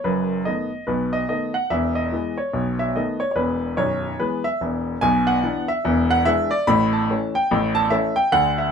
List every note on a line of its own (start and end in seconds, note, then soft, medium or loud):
0.04 0.40 F#1 medium
0.04 0.40 F#2 medium
0.04 0.45 B4 medium
0.45 0.69 D#3 soft
0.45 0.69 A3 soft
0.45 0.69 B3 soft
0.45 0.87 D#5 medium
0.87 1.23 B1 medium
0.87 1.23 B2 medium
0.87 1.13 B4 medium
1.13 1.27 D#5 medium
1.29 1.52 D#3 soft
1.29 1.52 A3 soft
1.29 1.53 B3 soft
1.29 1.54 D#5 medium
1.54 1.70 F#5 medium
1.70 2.06 E1 medium
1.70 2.06 E2 medium
1.70 1.96 E5 medium
1.95 2.37 D#5 medium
2.12 2.35 E3 soft
2.12 2.36 G#3 soft
2.12 2.36 B3 soft
2.38 2.79 C#5 medium
2.53 2.89 B1 medium
2.53 2.89 B2 medium
2.79 2.95 E5 medium
2.96 3.19 D#3 soft
2.96 3.19 A3 soft
2.96 3.19 B3 soft
2.96 3.21 D#5 medium
3.20 3.30 C#5 medium
3.31 3.37 C#5 medium
3.36 3.69 E1 medium
3.36 3.69 E2 medium
3.36 3.78 B4 medium
3.77 4.11 B0 medium
3.77 4.11 B1 medium
3.77 4.19 C#5 medium
4.20 4.43 E3 medium
4.20 4.42 G#3 soft
4.20 4.42 B3 soft
4.20 4.45 B4 medium
4.44 4.61 E5 medium
4.61 4.94 E1 medium
4.61 4.94 E2 medium
5.01 5.38 B1 medium
5.01 5.37 B2 medium
5.01 5.28 G#5 loud
5.27 5.69 F#5 loud
5.43 5.66 E3 soft
5.43 5.66 B3 medium
5.43 5.66 D4 medium
5.68 6.10 E5 loud
5.85 6.20 E1 medium
5.85 6.20 E2 loud
6.11 6.27 F#5 loud
6.25 6.49 E3 medium
6.25 6.49 G#3 medium
6.25 6.49 D4 medium
6.25 6.52 E5 loud
6.51 6.67 D5 loud
6.67 7.03 A1 medium
6.67 7.03 A2 loud
6.67 6.93 B5 loud
6.93 7.35 A5 medium
7.10 7.33 E3 medium
7.10 7.33 A3 soft
7.10 7.33 C#4 medium
7.35 7.76 G5 loud
7.51 7.86 A1 medium
7.51 7.86 A2 loud
7.75 7.91 A5 loud
7.90 8.14 E3 medium
7.90 8.14 A3 medium
7.90 8.14 C#4 medium
7.90 8.17 E5 loud
8.16 8.33 G5 loud
8.32 8.68 D2 medium
8.32 8.68 D3 medium
8.32 8.58 F#5 loud
8.58 8.72 E5 medium